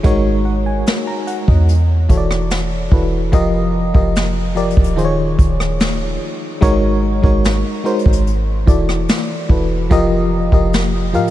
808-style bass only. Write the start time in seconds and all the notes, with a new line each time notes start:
0.04 G#1
1.48 E2
2.10 E1
2.92 E1
3.33 F1
3.95 F1
4.77 D#1
5.39 D#1
6.62 G#1
7.24 G#1
8.06 G#1
8.67 E1
9.50 E1
9.91 F1
10.52 F1
11.14 A2